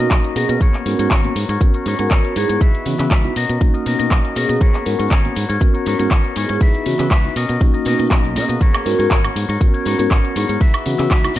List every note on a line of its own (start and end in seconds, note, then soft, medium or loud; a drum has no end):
0.00 0.33 A#3 medium
0.00 0.33 C#4 medium
0.00 0.33 D#4 medium
0.00 0.33 F#4 medium
0.00 0.10 F#4 soft
0.00 0.11 A#4 medium
0.00 0.11 D#5 medium
0.11 0.19 B1 medium
0.11 0.34 C#4 medium
0.11 0.36 A#4 medium
0.11 0.36 D#5 medium
0.11 kick loud
0.11 clap loud
0.11 closed hi-hat medium
0.24 closed hi-hat soft
0.36 0.44 B2 medium
0.36 0.83 A#3 medium
0.36 0.83 B3 medium
0.36 0.49 C#4 medium
0.36 0.83 C#4 medium
0.36 0.49 F#4 medium
0.36 0.83 G#4 medium
0.36 0.49 A#4 medium
0.36 0.48 D#5 medium
0.36 open hi-hat loud
0.36 tambourine medium
0.49 0.56 B2 loud
0.49 0.60 F#4 soft
0.49 0.61 A#4 medium
0.49 0.61 D#5 medium
0.49 closed hi-hat medium
0.49 tambourine soft
0.61 0.69 G#1 medium
0.61 0.99 B3 medium
0.61 0.99 F#4 medium
0.61 0.99 A#4 medium
0.61 0.98 C#5 medium
0.61 kick loud
0.61 closed hi-hat medium
0.74 clap soft
0.74 closed hi-hat soft
0.86 0.94 G#2 medium
0.86 1.21 B3 medium
0.86 1.21 C#4 medium
0.86 1.21 F#4 loud
0.86 1.21 A#4 medium
0.86 open hi-hat loud
0.86 tambourine medium
0.99 1.06 G#2 loud
0.99 1.11 F#4 medium
0.99 1.11 A#4 medium
0.99 1.11 C#5 medium
0.99 closed hi-hat medium
0.99 tambourine medium
1.11 1.27 G#1 medium
1.11 1.50 F#4 medium
1.11 1.49 A#4 medium
1.11 1.48 C#5 loud
1.11 kick loud
1.11 clap loud
1.11 closed hi-hat medium
1.24 1.32 A#3 medium
1.24 1.32 B3 medium
1.24 1.32 C#4 medium
1.24 1.32 F#4 medium
1.24 closed hi-hat soft
1.36 1.44 G#2 medium
1.36 open hi-hat loud
1.36 tambourine loud
1.49 1.56 G#2 loud
1.49 1.75 F#4 medium
1.49 1.74 A#4 medium
1.49 1.73 C#5 medium
1.49 closed hi-hat medium
1.49 tambourine medium
1.61 1.69 G#1 medium
1.61 1.96 B3 medium
1.61 1.96 C#4 medium
1.61 1.96 F#4 loud
1.61 1.96 A#4 loud
1.61 kick loud
1.61 closed hi-hat medium
1.74 1.86 F#4 medium
1.74 1.86 A#4 medium
1.74 1.86 C#5 medium
1.74 closed hi-hat soft
1.86 1.94 G#2 loud
1.86 1.99 B3 medium
1.86 2.00 F#4 medium
1.86 1.99 A#4 medium
1.86 1.98 C#5 medium
1.86 open hi-hat loud
1.86 tambourine loud
1.99 2.06 G#2 medium
1.99 2.33 B3 medium
1.99 2.33 C#4 medium
1.99 2.33 F#4 medium
1.99 2.10 F#4 medium
1.99 2.33 A#4 medium
1.99 2.11 A#4 medium
1.99 2.11 C#5 medium
1.99 closed hi-hat medium
1.99 tambourine medium
2.11 2.19 G#1 loud
2.11 2.34 B3 medium
2.11 2.35 F#4 loud
2.11 2.36 A#4 medium
2.11 2.36 C#5 medium
2.11 kick loud
2.11 clap loud
2.11 closed hi-hat medium
2.24 closed hi-hat soft
2.35 2.44 G#2 medium
2.35 2.49 B3 medium
2.35 2.83 B3 medium
2.35 2.83 D#4 medium
2.35 2.83 E4 medium
2.35 2.49 F#4 medium
2.35 2.84 G#4 medium
2.35 2.49 A#4 medium
2.35 2.48 C#5 medium
2.35 open hi-hat loud
2.35 tambourine medium
2.49 2.56 G#2 medium
2.49 2.60 F#4 medium
2.49 2.61 A#4 medium
2.49 2.61 C#5 medium
2.49 closed hi-hat medium
2.49 tambourine soft
2.61 2.69 C#2 loud
2.61 2.99 D#4 medium
2.61 2.99 F#4 medium
2.61 2.99 B4 medium
2.61 2.98 E5 medium
2.61 kick loud
2.61 closed hi-hat medium
2.74 muted fingered electric bass stroke soft
2.74 closed hi-hat soft
2.85 2.94 C#3 medium
2.85 3.21 E3 medium
2.85 3.21 B3 medium
2.85 3.21 F#4 loud
2.85 open hi-hat loud
2.85 tambourine medium
2.99 3.06 C#3 loud
2.99 3.10 F#4 soft
2.99 3.11 B4 medium
2.99 3.11 E5 medium
2.99 clap soft
2.99 closed hi-hat medium
2.99 tambourine medium
3.11 3.27 C#2 medium
3.11 3.36 D#4 medium
3.11 3.35 F#4 loud
3.11 3.36 B4 medium
3.11 3.37 E5 medium
3.11 kick loud
3.11 clap loud
3.11 closed hi-hat medium
3.24 3.32 B3 medium
3.24 3.32 D#4 medium
3.24 3.32 E4 medium
3.24 3.32 F#4 loud
3.24 closed hi-hat soft
3.36 3.44 B2 medium
3.36 3.74 C#4 medium
3.36 3.74 F#4 medium
3.36 3.74 A#4 medium
3.36 3.73 D#5 medium
3.36 open hi-hat loud
3.36 tambourine medium
3.49 3.56 B2 loud
3.49 closed hi-hat medium
3.61 3.69 B1 medium
3.61 3.96 A#3 loud
3.61 3.96 C#4 medium
3.61 3.96 D#4 medium
3.61 3.96 F#4 loud
3.61 kick loud
3.61 closed hi-hat medium
3.61 tambourine soft
3.74 3.85 F#4 medium
3.74 3.86 A#4 medium
3.74 3.86 D#5 medium
3.74 closed hi-hat soft
3.86 3.94 B2 loud
3.86 3.99 C#4 medium
3.86 3.99 F#4 medium
3.86 3.99 A#4 medium
3.86 3.98 D#5 medium
3.86 open hi-hat loud
3.86 tambourine loud
3.99 4.06 B2 medium
3.99 4.33 A#3 medium
3.99 4.33 C#4 medium
3.99 4.33 D#4 medium
3.99 4.33 F#4 medium
3.99 4.10 F#4 soft
3.99 4.10 A#4 medium
3.99 4.11 D#5 medium
3.99 closed hi-hat medium
3.99 tambourine medium
4.11 4.19 B1 loud
4.11 4.34 C#4 medium
4.11 4.35 F#4 medium
4.11 4.36 A#4 medium
4.11 4.36 D#5 medium
4.11 kick loud
4.11 clap loud
4.11 closed hi-hat medium
4.25 closed hi-hat soft
4.35 4.44 B2 medium
4.35 4.83 A#3 medium
4.35 4.83 B3 medium
4.35 4.49 C#4 medium
4.35 4.83 C#4 medium
4.35 4.49 F#4 medium
4.35 4.83 G#4 medium
4.35 4.49 A#4 medium
4.35 4.48 D#5 medium
4.35 open hi-hat loud
4.35 tambourine loud
4.49 4.56 B2 medium
4.49 4.60 F#4 medium
4.49 4.60 A#4 medium
4.49 4.61 D#5 medium
4.49 closed hi-hat medium
4.61 4.69 G#1 loud
4.61 4.99 B3 medium
4.61 4.99 F#4 medium
4.61 4.99 A#4 medium
4.61 4.98 C#5 medium
4.61 kick loud
4.61 closed hi-hat medium
4.74 clap soft
4.74 closed hi-hat soft
4.86 4.94 G#2 medium
4.86 5.21 B3 medium
4.86 5.21 C#4 medium
4.86 5.21 F#4 loud
4.86 5.21 A#4 medium
4.86 open hi-hat loud
4.86 tambourine medium
4.99 5.06 G#2 medium
4.99 5.10 F#4 soft
4.99 5.11 A#4 medium
4.99 5.11 C#5 medium
4.99 closed hi-hat medium
4.99 tambourine medium
5.11 5.27 G#1 medium
5.11 5.49 B3 medium
5.11 5.49 F#4 loud
5.11 5.49 A#4 medium
5.11 5.48 C#5 loud
5.11 kick loud
5.11 clap loud
5.11 closed hi-hat medium
5.11 tambourine soft
5.24 5.32 A#3 medium
5.24 5.32 B3 medium
5.24 5.32 C#4 medium
5.24 5.32 F#4 medium
5.24 closed hi-hat soft
5.35 5.44 G#2 medium
5.35 open hi-hat loud
5.35 tambourine medium
5.49 5.56 G#2 loud
5.49 5.75 F#4 medium
5.49 5.74 A#4 medium
5.49 5.73 C#5 medium
5.49 closed hi-hat soft
5.49 tambourine medium
5.60 5.69 G#1 medium
5.60 5.96 B3 medium
5.60 5.96 C#4 medium
5.60 5.96 F#4 loud
5.60 5.96 A#4 loud
5.60 kick loud
5.60 closed hi-hat medium
5.60 tambourine soft
5.74 5.85 F#4 medium
5.74 5.86 A#4 medium
5.74 5.86 C#5 medium
5.74 closed hi-hat soft
5.86 5.94 G#2 loud
5.86 5.99 B3 medium
5.86 6.00 F#4 medium
5.86 5.99 A#4 medium
5.86 5.98 C#5 medium
5.86 open hi-hat loud
5.86 tambourine loud
5.99 6.06 G#2 medium
5.99 6.33 B3 medium
5.99 6.33 C#4 medium
5.99 6.33 F#4 medium
5.99 6.10 F#4 soft
5.99 6.33 A#4 medium
5.99 6.11 A#4 medium
5.99 6.11 C#5 medium
5.99 closed hi-hat medium
5.99 tambourine medium
6.11 6.19 G#1 loud
6.11 6.35 B3 medium
6.11 6.35 F#4 medium
6.11 6.36 A#4 medium
6.11 6.37 C#5 medium
6.11 kick loud
6.11 clap loud
6.11 closed hi-hat medium
6.24 closed hi-hat soft
6.36 6.44 G#2 medium
6.36 6.49 B3 medium
6.36 6.83 B3 medium
6.36 6.83 D#4 medium
6.36 6.83 E4 medium
6.36 6.49 F#4 medium
6.36 6.83 G#4 medium
6.36 6.49 A#4 medium
6.36 6.48 C#5 medium
6.36 open hi-hat loud
6.36 tambourine loud
6.49 6.57 G#2 medium
6.49 6.61 F#4 medium
6.49 6.62 A#4 medium
6.49 6.61 C#5 medium
6.49 closed hi-hat medium
6.49 tambourine soft
6.61 6.69 C#2 loud
6.61 6.99 D#4 medium
6.61 7.00 F#4 medium
6.61 6.99 B4 medium
6.61 6.98 E5 loud
6.61 kick loud
6.61 closed hi-hat medium
6.74 muted fingered electric bass stroke soft
6.74 closed hi-hat soft
6.86 6.94 C#3 medium
6.86 7.21 E3 medium
6.86 7.21 B3 medium
6.86 7.21 F#4 loud
6.86 open hi-hat loud
6.86 tambourine loud
6.99 7.06 C#3 medium
6.99 7.10 F#4 medium
6.99 7.11 B4 medium
6.99 7.11 E5 medium
6.99 clap soft
6.99 closed hi-hat medium
6.99 tambourine medium
7.11 7.27 C#2 medium
7.11 7.35 D#4 medium
7.11 7.35 F#4 medium
7.11 7.37 B4 loud
7.11 7.37 E5 loud
7.11 kick loud
7.11 clap loud
7.11 closed hi-hat medium
7.24 7.32 B3 medium
7.24 7.32 D#4 medium
7.24 7.32 E4 medium
7.24 7.32 F#4 loud
7.24 closed hi-hat soft
7.36 7.44 B2 medium
7.36 7.74 C#4 medium
7.36 7.74 F#4 medium
7.36 7.74 A#4 medium
7.36 7.73 D#5 loud
7.36 open hi-hat loud
7.36 tambourine medium
7.49 7.56 B2 loud
7.49 closed hi-hat soft
7.49 tambourine medium
7.61 7.69 B1 medium
7.61 7.96 A#3 loud
7.61 7.96 C#4 medium
7.61 7.96 D#4 medium
7.61 7.96 F#4 loud
7.61 kick loud
7.61 closed hi-hat medium
7.61 tambourine soft
7.74 7.85 F#4 soft
7.74 7.86 A#4 medium
7.74 7.86 D#5 medium
7.74 muted fingered electric bass stroke soft
7.74 closed hi-hat soft
7.85 7.94 B2 loud
7.85 7.99 C#4 medium
7.85 7.99 F#4 medium
7.85 7.99 A#4 medium
7.85 7.98 D#5 medium
7.85 open hi-hat loud
7.85 tambourine loud
7.99 8.06 B2 medium
7.99 8.33 A#3 medium
7.99 8.33 C#4 medium
7.99 8.33 D#4 medium
7.99 8.33 F#4 medium
7.99 8.10 F#4 soft
7.99 8.11 A#4 medium
7.99 8.11 D#5 medium
7.99 closed hi-hat soft
7.99 tambourine soft
8.11 8.37 B1 medium
8.11 8.34 C#4 medium
8.11 8.35 F#4 medium
8.11 8.36 A#4 loud
8.11 8.36 D#5 medium
8.11 kick loud
8.11 clap loud
8.11 closed hi-hat soft
8.24 closed hi-hat soft
8.35 8.44 B2 medium
8.35 8.83 A#3 medium
8.35 8.83 B3 medium
8.35 8.49 C#4 medium
8.35 8.83 C#4 medium
8.35 8.49 F#4 medium
8.35 8.83 G#4 medium
8.35 8.49 A#4 medium
8.35 8.47 D#5 medium
8.35 open hi-hat loud
8.35 tambourine medium
8.49 8.56 B2 medium
8.49 8.60 F#4 medium
8.49 8.60 A#4 medium
8.49 8.61 D#5 medium
8.49 closed hi-hat soft
8.49 tambourine soft
8.61 8.69 G#1 loud
8.61 8.99 B3 medium
8.61 8.99 F#4 medium
8.61 8.99 A#4 medium
8.61 8.97 C#5 medium
8.61 kick loud
8.61 closed hi-hat medium
8.61 tambourine soft
8.74 clap soft
8.74 closed hi-hat soft
8.74 high woodblock medium
8.86 8.94 G#2 medium
8.86 9.21 B3 medium
8.86 9.21 C#4 medium
8.86 9.21 F#4 loud
8.86 9.21 A#4 medium
8.86 open hi-hat loud
8.86 tambourine medium
8.99 9.06 G#2 medium
8.99 9.10 F#4 medium
8.99 9.10 A#4 medium
8.99 9.11 C#5 medium
8.99 closed hi-hat medium
8.99 tambourine medium
9.11 9.27 G#1 medium
9.11 9.49 B3 medium
9.11 9.49 F#4 medium
9.11 9.49 A#4 medium
9.11 9.47 C#5 loud
9.11 kick loud
9.11 clap loud
9.11 closed hi-hat medium
9.24 9.32 A#3 medium
9.24 9.32 B3 medium
9.24 9.32 C#4 medium
9.24 9.32 F#4 loud
9.24 closed hi-hat soft
9.24 high woodblock medium
9.36 9.44 G#2 medium
9.36 open hi-hat loud
9.36 tambourine medium
9.49 9.56 G#2 loud
9.49 9.74 F#4 medium
9.49 9.74 A#4 medium
9.49 9.73 C#5 medium
9.49 closed hi-hat medium
9.49 tambourine medium
9.60 9.69 G#1 medium
9.60 9.96 B3 medium
9.60 9.96 C#4 medium
9.60 9.96 F#4 loud
9.60 9.96 A#4 medium
9.60 kick loud
9.60 closed hi-hat medium
9.74 9.85 F#4 medium
9.74 9.86 A#4 medium
9.74 9.86 C#5 medium
9.74 closed hi-hat soft
9.85 9.94 G#2 loud
9.85 9.99 B3 medium
9.85 9.99 F#4 medium
9.85 9.98 A#4 medium
9.85 9.97 C#5 medium
9.85 open hi-hat loud
9.85 tambourine loud
9.98 10.06 G#2 medium
9.98 10.33 B3 medium
9.98 10.33 C#4 medium
9.98 10.33 F#4 loud
9.98 10.10 F#4 soft
9.98 10.33 A#4 medium
9.98 10.10 A#4 medium
9.98 10.11 C#5 medium
9.98 closed hi-hat medium
9.98 tambourine soft
10.10 10.19 G#1 loud
10.10 10.34 B3 medium
10.10 10.35 F#4 medium
10.10 10.35 A#4 medium
10.10 10.36 C#5 loud
10.10 kick loud
10.10 clap loud
10.10 closed hi-hat soft
10.25 closed hi-hat soft
10.35 10.44 G#2 medium
10.35 10.49 B3 medium
10.35 10.83 B3 medium
10.35 10.83 D#4 medium
10.35 10.83 E4 medium
10.35 10.49 F#4 medium
10.35 10.83 G#4 medium
10.35 10.48 A#4 medium
10.35 10.47 C#5 medium
10.35 open hi-hat loud
10.35 tambourine medium
10.48 10.56 G#2 medium
10.48 10.60 F#4 soft
10.48 10.61 A#4 medium
10.48 10.61 C#5 medium
10.48 closed hi-hat soft
10.48 tambourine medium
10.60 10.69 C#2 loud
10.60 10.99 D#4 medium
10.60 10.99 F#4 medium
10.60 10.98 B4 medium
10.60 10.97 E5 medium
10.60 kick loud
10.60 closed hi-hat medium
10.74 closed hi-hat soft
10.74 high woodblock medium
10.86 10.94 C#3 medium
10.86 11.21 E3 medium
10.86 11.21 B3 medium
10.86 11.21 F#4 loud
10.86 open hi-hat loud
10.86 tambourine medium
10.98 11.06 C#3 loud
10.98 11.09 F#4 medium
10.98 11.10 B4 medium
10.98 11.10 E5 medium
10.98 clap soft
10.98 closed hi-hat medium
10.98 tambourine soft
11.10 11.27 C#2 medium
11.10 11.35 D#4 loud
11.10 11.35 F#4 loud
11.10 11.36 B4 loud
11.10 11.36 E5 medium
11.10 kick loud
11.10 clap loud
11.10 closed hi-hat medium
11.24 11.32 B3 medium
11.24 11.32 D#4 medium
11.24 11.32 E4 medium
11.24 11.32 F#4 loud
11.24 closed hi-hat soft
11.24 high woodblock medium
11.34 11.39 B2 medium
11.34 11.39 C#4 medium
11.34 11.39 F#4 medium
11.34 11.39 A#4 medium
11.34 open hi-hat loud
11.34 tambourine medium